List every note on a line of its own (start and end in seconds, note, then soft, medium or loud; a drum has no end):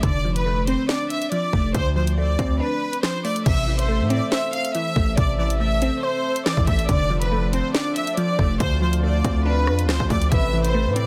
0.03 0.76 F1 loud
0.03 1.10 D3 medium
0.03 0.34 D5 loud
0.03 kick loud
0.03 closed hi-hat medium
0.24 1.31 F3 medium
0.35 0.65 B4 medium
0.35 closed hi-hat medium
0.46 1.52 A3 medium
0.67 1.75 C4 medium
0.67 0.86 C5 medium
0.67 closed hi-hat medium
0.89 1.75 D4 loud
0.89 1.07 D5 medium
0.89 snare loud
1.10 1.29 E5 medium
1.10 closed hi-hat medium
1.22 closed hi-hat medium
1.31 1.75 F3 medium
1.31 1.72 D5 medium
1.31 closed hi-hat medium
1.53 1.74 F1 loud
1.53 1.74 A3 medium
1.53 kick medium
1.74 2.36 D2 loud
1.74 2.82 D3 medium
1.74 1.93 C5 loud
1.74 kick loud
1.74 closed hi-hat medium
1.96 3.02 F3 medium
1.96 2.14 C5 medium
2.07 closed hi-hat medium
2.17 3.23 A3 medium
2.17 2.58 D5 medium
2.39 2.60 D2 loud
2.39 3.46 C4 medium
2.39 kick medium
2.39 closed hi-hat medium
2.60 3.46 D4 medium
2.60 3.01 B4 medium
2.93 closed hi-hat medium
3.03 3.46 F3 medium
3.03 3.21 C5 medium
3.03 snare loud
3.24 3.46 A3 loud
3.24 3.43 D5 medium
3.24 open hi-hat medium
3.36 closed hi-hat medium
3.46 4.02 A1 loud
3.46 4.53 C3 medium
3.46 6.85 A3 medium
3.46 8.56 A4 medium
3.46 6.85 C5 medium
3.46 6.85 E5 medium
3.46 3.77 E5 loud
3.46 kick loud
3.46 closed hi-hat medium
3.46 crash loud
3.68 4.74 E3 medium
3.79 4.08 C5 medium
3.79 closed hi-hat medium
3.89 4.95 A3 medium
4.00 4.21 A2 loud
4.10 5.17 C4 medium
4.10 4.29 D5 medium
4.10 closed hi-hat medium
4.32 5.39 C5 loud
4.32 4.50 E5 medium
4.32 snare loud
4.53 4.72 F5 medium
4.53 closed hi-hat medium
4.65 closed hi-hat medium
4.74 5.38 E3 medium
4.74 5.15 E5 medium
4.74 closed hi-hat medium
4.96 5.17 A1 loud
4.96 5.59 A3 medium
4.96 kick medium
5.17 5.90 A1 loud
5.17 6.25 C3 loud
5.17 5.36 D5 loud
5.17 kick loud
5.17 closed hi-hat medium
5.39 6.45 E3 medium
5.39 5.57 D5 medium
5.50 closed hi-hat medium
5.60 6.66 A3 medium
5.60 6.00 E5 medium
5.82 6.89 C4 medium
5.82 closed hi-hat medium
6.03 6.43 C5 medium
6.03 6.89 C5 loud
6.36 closed hi-hat medium
6.46 6.89 E3 medium
6.46 6.64 D5 medium
6.46 snare loud
6.57 6.67 A1 loud
6.57 kick loud
6.67 6.88 A1 loud
6.67 6.89 A3 medium
6.67 6.86 E5 medium
6.67 kick loud
6.67 closed hi-hat medium
6.79 closed hi-hat medium
6.89 7.61 F1 loud
6.89 7.96 D3 medium
6.89 8.59 F3 medium
6.89 8.59 C4 medium
6.89 8.59 D4 medium
6.89 7.20 D5 loud
6.89 kick loud
6.89 closed hi-hat medium
7.10 8.16 F3 medium
7.21 7.51 B4 medium
7.21 closed hi-hat medium
7.32 8.37 A3 medium
7.53 8.60 C4 medium
7.53 7.71 C5 medium
7.53 closed hi-hat medium
7.75 8.60 D4 loud
7.75 7.93 D5 medium
7.75 snare loud
7.96 8.14 E5 medium
7.96 closed hi-hat medium
8.07 closed hi-hat medium
8.17 8.60 F3 medium
8.17 8.57 D5 medium
8.17 closed hi-hat medium
8.38 8.59 F1 loud
8.38 8.60 A3 medium
8.38 kick medium
8.60 9.22 D2 loud
8.60 9.67 D3 medium
8.60 10.30 D3 medium
8.60 11.07 C4 medium
8.60 10.30 D4 medium
8.60 10.30 F4 medium
8.60 8.79 C5 loud
8.60 kick loud
8.60 closed hi-hat medium
8.81 9.87 F3 medium
8.81 9.00 C5 medium
8.93 closed hi-hat medium
9.03 10.09 A3 medium
9.03 9.43 D5 medium
9.24 9.69 D2 loud
9.24 10.32 C4 medium
9.24 kick loud
9.24 closed hi-hat medium
9.46 10.31 D4 medium
9.46 9.86 B4 medium
9.67 9.85 F2 loud
9.67 cross-stick loud
9.79 closed hi-hat medium
9.84 9.99 D2 loud
9.89 10.32 F3 medium
9.89 10.07 C5 medium
9.89 cross-stick medium
9.89 snare loud
10.00 10.10 D2 loud
10.00 kick loud
10.10 10.31 D2 loud
10.10 10.32 A3 medium
10.10 10.29 D5 medium
10.10 kick loud
10.10 open hi-hat medium
10.22 closed hi-hat medium
10.32 10.87 A1 loud
10.32 11.07 C3 loud
10.32 11.07 A3 medium
10.32 11.07 A4 medium
10.32 11.07 B4 loud
10.32 11.07 E5 medium
10.32 10.63 E5 medium
10.32 kick loud
10.32 closed hi-hat medium
10.53 11.07 E3 medium
10.65 10.94 C5 medium
10.65 closed hi-hat medium
10.74 11.07 A3 medium
10.86 11.06 A2 loud
10.96 11.07 C4 medium
10.96 11.07 D5 medium
10.96 closed hi-hat medium